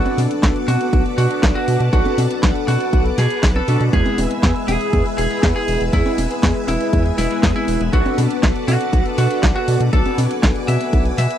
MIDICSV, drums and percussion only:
0, 0, Header, 1, 2, 480
1, 0, Start_track
1, 0, Tempo, 500000
1, 1854, Time_signature, 4, 2, 24, 8
1, 10926, End_track
2, 0, Start_track
2, 0, Title_t, "Drums"
2, 55, Note_on_c, 9, 42, 26
2, 55, Note_on_c, 9, 63, 76
2, 151, Note_off_c, 9, 42, 0
2, 151, Note_off_c, 9, 63, 0
2, 175, Note_on_c, 9, 46, 99
2, 175, Note_on_c, 9, 63, 79
2, 271, Note_off_c, 9, 46, 0
2, 271, Note_off_c, 9, 63, 0
2, 296, Note_on_c, 9, 42, 54
2, 392, Note_off_c, 9, 42, 0
2, 413, Note_on_c, 9, 36, 124
2, 415, Note_on_c, 9, 38, 126
2, 415, Note_on_c, 9, 39, 107
2, 415, Note_on_c, 9, 42, 53
2, 509, Note_off_c, 9, 36, 0
2, 511, Note_off_c, 9, 38, 0
2, 511, Note_off_c, 9, 39, 0
2, 511, Note_off_c, 9, 42, 0
2, 536, Note_on_c, 9, 42, 26
2, 632, Note_off_c, 9, 42, 0
2, 655, Note_on_c, 9, 46, 103
2, 655, Note_on_c, 9, 63, 77
2, 751, Note_off_c, 9, 46, 0
2, 751, Note_off_c, 9, 63, 0
2, 775, Note_on_c, 9, 42, 52
2, 871, Note_off_c, 9, 42, 0
2, 892, Note_on_c, 9, 36, 125
2, 894, Note_on_c, 9, 42, 51
2, 988, Note_off_c, 9, 36, 0
2, 990, Note_off_c, 9, 42, 0
2, 1015, Note_on_c, 9, 42, 25
2, 1111, Note_off_c, 9, 42, 0
2, 1134, Note_on_c, 9, 46, 100
2, 1230, Note_off_c, 9, 46, 0
2, 1255, Note_on_c, 9, 42, 54
2, 1351, Note_off_c, 9, 42, 0
2, 1373, Note_on_c, 9, 36, 119
2, 1374, Note_on_c, 9, 38, 126
2, 1374, Note_on_c, 9, 39, 110
2, 1374, Note_on_c, 9, 42, 51
2, 1469, Note_off_c, 9, 36, 0
2, 1470, Note_off_c, 9, 38, 0
2, 1470, Note_off_c, 9, 39, 0
2, 1470, Note_off_c, 9, 42, 0
2, 1494, Note_on_c, 9, 42, 26
2, 1590, Note_off_c, 9, 42, 0
2, 1612, Note_on_c, 9, 46, 99
2, 1708, Note_off_c, 9, 46, 0
2, 1732, Note_on_c, 9, 42, 49
2, 1828, Note_off_c, 9, 42, 0
2, 1852, Note_on_c, 9, 42, 51
2, 1853, Note_on_c, 9, 36, 120
2, 1948, Note_off_c, 9, 42, 0
2, 1949, Note_off_c, 9, 36, 0
2, 1972, Note_on_c, 9, 42, 25
2, 1972, Note_on_c, 9, 63, 80
2, 2068, Note_off_c, 9, 42, 0
2, 2068, Note_off_c, 9, 63, 0
2, 2094, Note_on_c, 9, 46, 102
2, 2094, Note_on_c, 9, 63, 78
2, 2190, Note_off_c, 9, 46, 0
2, 2190, Note_off_c, 9, 63, 0
2, 2214, Note_on_c, 9, 42, 52
2, 2310, Note_off_c, 9, 42, 0
2, 2332, Note_on_c, 9, 38, 127
2, 2332, Note_on_c, 9, 39, 101
2, 2332, Note_on_c, 9, 42, 52
2, 2333, Note_on_c, 9, 36, 121
2, 2428, Note_off_c, 9, 38, 0
2, 2428, Note_off_c, 9, 39, 0
2, 2428, Note_off_c, 9, 42, 0
2, 2429, Note_off_c, 9, 36, 0
2, 2453, Note_on_c, 9, 42, 26
2, 2549, Note_off_c, 9, 42, 0
2, 2573, Note_on_c, 9, 46, 99
2, 2573, Note_on_c, 9, 63, 80
2, 2669, Note_off_c, 9, 46, 0
2, 2669, Note_off_c, 9, 63, 0
2, 2693, Note_on_c, 9, 42, 49
2, 2789, Note_off_c, 9, 42, 0
2, 2813, Note_on_c, 9, 36, 121
2, 2814, Note_on_c, 9, 42, 50
2, 2909, Note_off_c, 9, 36, 0
2, 2910, Note_off_c, 9, 42, 0
2, 2934, Note_on_c, 9, 42, 24
2, 3030, Note_off_c, 9, 42, 0
2, 3052, Note_on_c, 9, 38, 63
2, 3052, Note_on_c, 9, 46, 97
2, 3148, Note_off_c, 9, 38, 0
2, 3148, Note_off_c, 9, 46, 0
2, 3172, Note_on_c, 9, 42, 50
2, 3268, Note_off_c, 9, 42, 0
2, 3292, Note_on_c, 9, 38, 120
2, 3292, Note_on_c, 9, 39, 102
2, 3292, Note_on_c, 9, 46, 61
2, 3293, Note_on_c, 9, 36, 118
2, 3388, Note_off_c, 9, 38, 0
2, 3388, Note_off_c, 9, 39, 0
2, 3388, Note_off_c, 9, 46, 0
2, 3389, Note_off_c, 9, 36, 0
2, 3413, Note_on_c, 9, 42, 26
2, 3413, Note_on_c, 9, 63, 66
2, 3509, Note_off_c, 9, 42, 0
2, 3509, Note_off_c, 9, 63, 0
2, 3533, Note_on_c, 9, 46, 101
2, 3629, Note_off_c, 9, 46, 0
2, 3654, Note_on_c, 9, 42, 49
2, 3750, Note_off_c, 9, 42, 0
2, 3773, Note_on_c, 9, 36, 118
2, 3775, Note_on_c, 9, 42, 50
2, 3869, Note_off_c, 9, 36, 0
2, 3871, Note_off_c, 9, 42, 0
2, 3894, Note_on_c, 9, 42, 25
2, 3894, Note_on_c, 9, 63, 84
2, 3990, Note_off_c, 9, 42, 0
2, 3990, Note_off_c, 9, 63, 0
2, 4014, Note_on_c, 9, 46, 105
2, 4014, Note_on_c, 9, 63, 82
2, 4110, Note_off_c, 9, 46, 0
2, 4110, Note_off_c, 9, 63, 0
2, 4135, Note_on_c, 9, 42, 50
2, 4231, Note_off_c, 9, 42, 0
2, 4253, Note_on_c, 9, 36, 118
2, 4255, Note_on_c, 9, 38, 122
2, 4255, Note_on_c, 9, 39, 98
2, 4255, Note_on_c, 9, 42, 51
2, 4349, Note_off_c, 9, 36, 0
2, 4351, Note_off_c, 9, 38, 0
2, 4351, Note_off_c, 9, 39, 0
2, 4351, Note_off_c, 9, 42, 0
2, 4375, Note_on_c, 9, 42, 27
2, 4471, Note_off_c, 9, 42, 0
2, 4495, Note_on_c, 9, 46, 111
2, 4495, Note_on_c, 9, 63, 82
2, 4591, Note_off_c, 9, 46, 0
2, 4591, Note_off_c, 9, 63, 0
2, 4615, Note_on_c, 9, 42, 49
2, 4711, Note_off_c, 9, 42, 0
2, 4733, Note_on_c, 9, 36, 112
2, 4734, Note_on_c, 9, 42, 50
2, 4829, Note_off_c, 9, 36, 0
2, 4830, Note_off_c, 9, 42, 0
2, 4854, Note_on_c, 9, 42, 26
2, 4950, Note_off_c, 9, 42, 0
2, 4974, Note_on_c, 9, 46, 106
2, 5070, Note_off_c, 9, 46, 0
2, 5094, Note_on_c, 9, 42, 50
2, 5190, Note_off_c, 9, 42, 0
2, 5214, Note_on_c, 9, 36, 120
2, 5214, Note_on_c, 9, 38, 126
2, 5214, Note_on_c, 9, 39, 95
2, 5214, Note_on_c, 9, 42, 51
2, 5310, Note_off_c, 9, 36, 0
2, 5310, Note_off_c, 9, 38, 0
2, 5310, Note_off_c, 9, 39, 0
2, 5310, Note_off_c, 9, 42, 0
2, 5335, Note_on_c, 9, 42, 26
2, 5431, Note_off_c, 9, 42, 0
2, 5453, Note_on_c, 9, 46, 103
2, 5549, Note_off_c, 9, 46, 0
2, 5575, Note_on_c, 9, 42, 48
2, 5671, Note_off_c, 9, 42, 0
2, 5693, Note_on_c, 9, 36, 115
2, 5694, Note_on_c, 9, 42, 54
2, 5789, Note_off_c, 9, 36, 0
2, 5790, Note_off_c, 9, 42, 0
2, 5815, Note_on_c, 9, 42, 27
2, 5815, Note_on_c, 9, 63, 82
2, 5911, Note_off_c, 9, 42, 0
2, 5911, Note_off_c, 9, 63, 0
2, 5934, Note_on_c, 9, 46, 107
2, 5934, Note_on_c, 9, 63, 82
2, 6030, Note_off_c, 9, 46, 0
2, 6030, Note_off_c, 9, 63, 0
2, 6054, Note_on_c, 9, 42, 55
2, 6150, Note_off_c, 9, 42, 0
2, 6173, Note_on_c, 9, 36, 112
2, 6175, Note_on_c, 9, 38, 123
2, 6175, Note_on_c, 9, 39, 101
2, 6175, Note_on_c, 9, 42, 55
2, 6269, Note_off_c, 9, 36, 0
2, 6271, Note_off_c, 9, 38, 0
2, 6271, Note_off_c, 9, 39, 0
2, 6271, Note_off_c, 9, 42, 0
2, 6295, Note_on_c, 9, 42, 27
2, 6391, Note_off_c, 9, 42, 0
2, 6413, Note_on_c, 9, 46, 108
2, 6413, Note_on_c, 9, 63, 84
2, 6509, Note_off_c, 9, 46, 0
2, 6509, Note_off_c, 9, 63, 0
2, 6533, Note_on_c, 9, 42, 51
2, 6629, Note_off_c, 9, 42, 0
2, 6653, Note_on_c, 9, 36, 114
2, 6654, Note_on_c, 9, 42, 52
2, 6749, Note_off_c, 9, 36, 0
2, 6750, Note_off_c, 9, 42, 0
2, 6774, Note_on_c, 9, 42, 27
2, 6870, Note_off_c, 9, 42, 0
2, 6894, Note_on_c, 9, 38, 57
2, 6894, Note_on_c, 9, 46, 109
2, 6990, Note_off_c, 9, 38, 0
2, 6990, Note_off_c, 9, 46, 0
2, 7015, Note_on_c, 9, 42, 54
2, 7111, Note_off_c, 9, 42, 0
2, 7133, Note_on_c, 9, 36, 113
2, 7134, Note_on_c, 9, 38, 120
2, 7134, Note_on_c, 9, 39, 96
2, 7134, Note_on_c, 9, 46, 63
2, 7229, Note_off_c, 9, 36, 0
2, 7230, Note_off_c, 9, 38, 0
2, 7230, Note_off_c, 9, 39, 0
2, 7230, Note_off_c, 9, 46, 0
2, 7255, Note_on_c, 9, 42, 27
2, 7255, Note_on_c, 9, 63, 66
2, 7351, Note_off_c, 9, 42, 0
2, 7351, Note_off_c, 9, 63, 0
2, 7373, Note_on_c, 9, 46, 113
2, 7469, Note_off_c, 9, 46, 0
2, 7494, Note_on_c, 9, 42, 53
2, 7590, Note_off_c, 9, 42, 0
2, 7613, Note_on_c, 9, 36, 111
2, 7614, Note_on_c, 9, 42, 54
2, 7709, Note_off_c, 9, 36, 0
2, 7710, Note_off_c, 9, 42, 0
2, 7734, Note_on_c, 9, 42, 27
2, 7734, Note_on_c, 9, 63, 79
2, 7830, Note_off_c, 9, 42, 0
2, 7830, Note_off_c, 9, 63, 0
2, 7854, Note_on_c, 9, 46, 107
2, 7854, Note_on_c, 9, 63, 82
2, 7950, Note_off_c, 9, 46, 0
2, 7950, Note_off_c, 9, 63, 0
2, 7974, Note_on_c, 9, 42, 57
2, 8070, Note_off_c, 9, 42, 0
2, 8093, Note_on_c, 9, 36, 112
2, 8094, Note_on_c, 9, 38, 114
2, 8094, Note_on_c, 9, 39, 104
2, 8094, Note_on_c, 9, 42, 55
2, 8189, Note_off_c, 9, 36, 0
2, 8190, Note_off_c, 9, 38, 0
2, 8190, Note_off_c, 9, 39, 0
2, 8190, Note_off_c, 9, 42, 0
2, 8215, Note_on_c, 9, 42, 30
2, 8311, Note_off_c, 9, 42, 0
2, 8334, Note_on_c, 9, 46, 108
2, 8334, Note_on_c, 9, 63, 82
2, 8430, Note_off_c, 9, 46, 0
2, 8430, Note_off_c, 9, 63, 0
2, 8454, Note_on_c, 9, 42, 51
2, 8550, Note_off_c, 9, 42, 0
2, 8573, Note_on_c, 9, 36, 112
2, 8575, Note_on_c, 9, 42, 57
2, 8669, Note_off_c, 9, 36, 0
2, 8671, Note_off_c, 9, 42, 0
2, 8694, Note_on_c, 9, 42, 27
2, 8790, Note_off_c, 9, 42, 0
2, 8812, Note_on_c, 9, 46, 110
2, 8908, Note_off_c, 9, 46, 0
2, 8934, Note_on_c, 9, 42, 54
2, 9030, Note_off_c, 9, 42, 0
2, 9053, Note_on_c, 9, 36, 110
2, 9053, Note_on_c, 9, 38, 113
2, 9053, Note_on_c, 9, 39, 100
2, 9053, Note_on_c, 9, 42, 57
2, 9149, Note_off_c, 9, 36, 0
2, 9149, Note_off_c, 9, 38, 0
2, 9149, Note_off_c, 9, 39, 0
2, 9149, Note_off_c, 9, 42, 0
2, 9173, Note_on_c, 9, 42, 28
2, 9269, Note_off_c, 9, 42, 0
2, 9292, Note_on_c, 9, 46, 111
2, 9388, Note_off_c, 9, 46, 0
2, 9413, Note_on_c, 9, 42, 54
2, 9509, Note_off_c, 9, 42, 0
2, 9532, Note_on_c, 9, 42, 57
2, 9533, Note_on_c, 9, 36, 111
2, 9628, Note_off_c, 9, 42, 0
2, 9629, Note_off_c, 9, 36, 0
2, 9654, Note_on_c, 9, 42, 28
2, 9654, Note_on_c, 9, 63, 78
2, 9750, Note_off_c, 9, 42, 0
2, 9750, Note_off_c, 9, 63, 0
2, 9775, Note_on_c, 9, 46, 109
2, 9775, Note_on_c, 9, 63, 76
2, 9871, Note_off_c, 9, 46, 0
2, 9871, Note_off_c, 9, 63, 0
2, 9895, Note_on_c, 9, 42, 59
2, 9991, Note_off_c, 9, 42, 0
2, 10013, Note_on_c, 9, 36, 114
2, 10015, Note_on_c, 9, 38, 120
2, 10015, Note_on_c, 9, 39, 102
2, 10015, Note_on_c, 9, 42, 56
2, 10109, Note_off_c, 9, 36, 0
2, 10111, Note_off_c, 9, 38, 0
2, 10111, Note_off_c, 9, 39, 0
2, 10111, Note_off_c, 9, 42, 0
2, 10134, Note_on_c, 9, 42, 29
2, 10230, Note_off_c, 9, 42, 0
2, 10255, Note_on_c, 9, 46, 112
2, 10255, Note_on_c, 9, 63, 76
2, 10351, Note_off_c, 9, 46, 0
2, 10351, Note_off_c, 9, 63, 0
2, 10374, Note_on_c, 9, 42, 54
2, 10470, Note_off_c, 9, 42, 0
2, 10493, Note_on_c, 9, 36, 118
2, 10493, Note_on_c, 9, 42, 56
2, 10589, Note_off_c, 9, 36, 0
2, 10589, Note_off_c, 9, 42, 0
2, 10613, Note_on_c, 9, 42, 28
2, 10709, Note_off_c, 9, 42, 0
2, 10733, Note_on_c, 9, 38, 58
2, 10733, Note_on_c, 9, 46, 106
2, 10829, Note_off_c, 9, 38, 0
2, 10829, Note_off_c, 9, 46, 0
2, 10853, Note_on_c, 9, 42, 56
2, 10926, Note_off_c, 9, 42, 0
2, 10926, End_track
0, 0, End_of_file